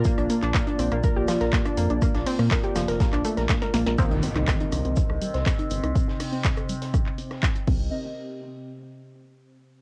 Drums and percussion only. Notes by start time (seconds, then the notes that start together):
0.04 kick, closed hi-hat, shaker
0.18 cross-stick, closed hi-hat
0.30 open hi-hat, shaker
0.42 clap, closed hi-hat
0.54 kick, cross-stick, snare, clap, closed hi-hat, shaker
0.67 closed hi-hat
0.79 open hi-hat, shaker
0.92 cross-stick, closed hi-hat
1.03 kick, closed hi-hat, shaker
1.28 cross-stick, snare, open hi-hat, shaker
1.40 snare, closed hi-hat
1.53 kick, snare, clap, closed hi-hat, shaker
1.65 cross-stick, closed hi-hat
1.77 open hi-hat, shaker
1.90 closed hi-hat
2.02 kick, cross-stick, closed hi-hat, shaker
2.15 snare, closed hi-hat
2.26 open hi-hat
2.39 cross-stick, closed hi-hat
2.51 kick, snare, clap, closed hi-hat, shaker
2.64 closed hi-hat
2.75 cross-stick, snare, open hi-hat, shaker
2.88 snare, open hi-hat
3.00 kick, snare, closed hi-hat, shaker
3.13 cross-stick, clap, closed hi-hat
3.25 open hi-hat, shaker
3.37 snare, closed hi-hat
3.49 kick, snare, clap, closed hi-hat, shaker
3.62 snare, closed hi-hat
3.74 snare, open hi-hat, shaker
3.87 snare, closed hi-hat
3.98 kick, cross-stick, closed hi-hat, shaker
4.11 closed hi-hat
4.23 open hi-hat, shaker
4.36 cross-stick, clap, closed hi-hat
4.48 kick, snare, clap, closed hi-hat, shaker
4.60 closed hi-hat
4.72 cross-stick, open hi-hat, shaker
4.85 closed hi-hat
4.96 kick, closed hi-hat, shaker
5.10 cross-stick
5.21 open hi-hat, shaker
5.34 snare, closed hi-hat
5.46 kick, cross-stick, snare, clap, closed hi-hat, shaker
5.59 closed hi-hat
5.70 open hi-hat, shaker
5.83 cross-stick, closed hi-hat
5.95 kick, closed hi-hat, shaker
6.08 snare
6.20 cross-stick, open hi-hat
6.33 closed hi-hat
6.44 kick, snare, clap, closed hi-hat, shaker
6.56 cross-stick, closed hi-hat
6.69 open hi-hat, shaker
6.82 snare, open hi-hat
6.94 kick, cross-stick, closed hi-hat, shaker
7.06 clap
7.18 open hi-hat, shaker
7.31 cross-stick, snare, closed hi-hat
7.43 kick, snare, clap, closed hi-hat, shaker
7.56 closed hi-hat
7.67 kick, crash